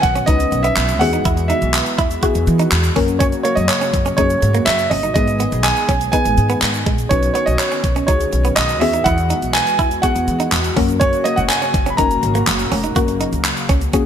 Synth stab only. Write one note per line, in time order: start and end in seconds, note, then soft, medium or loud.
0.28 0.80 C#4 medium
0.28 0.80 D#4 medium
0.28 0.80 F#4 medium
0.28 0.80 B4 medium
1.01 1.79 B3 medium
1.01 1.79 E4 medium
1.01 1.79 F#4 medium
1.01 1.79 G#4 medium
2.23 2.75 B3 medium
2.23 2.75 E4 medium
2.23 2.75 F#4 medium
2.23 2.75 G#4 loud
2.96 3.74 A#3 loud
2.96 3.74 C#4 medium
2.96 3.74 F#4 medium
2.96 3.74 A#4 loud
4.18 4.70 A#3 medium
4.18 4.70 C#4 medium
4.18 4.70 F#4 medium
4.18 4.70 G#4 medium
5.15 5.67 B3 medium
5.15 5.68 D#4 medium
5.15 5.68 G#4 medium
5.15 5.68 B4 medium
6.13 6.65 B3 medium
6.13 6.65 D#4 medium
6.13 6.65 G#4 medium
6.13 6.65 B4 medium
7.10 7.63 C#4 medium
7.10 7.63 D#4 medium
7.10 7.63 F#4 medium
7.10 7.63 B4 medium
8.08 8.60 C#4 medium
8.08 8.60 D#4 medium
8.08 8.60 F#4 medium
8.08 8.60 G#4 medium
8.81 9.59 B3 medium
8.81 9.59 E4 medium
8.81 9.60 F#4 medium
8.81 9.60 G#4 medium
10.03 10.55 B3 medium
10.03 10.55 E4 medium
10.03 10.55 F#4 medium
10.03 10.56 G#4 medium
10.76 11.54 A#3 loud
10.76 11.55 C#4 medium
10.76 11.55 F#4 medium
10.76 11.55 A#4 loud
11.98 12.50 A#3 medium
11.98 12.51 C#4 medium
11.98 12.51 F#4 medium
11.98 12.51 A#4 medium
12.96 13.48 A#3 medium
12.96 13.48 C#4 medium
12.96 13.48 F#4 medium
12.96 13.48 A#4 loud
13.93 14.06 A#3 loud
13.93 14.06 C#4 medium
13.93 14.06 F#4 medium
13.93 14.06 G#4 loud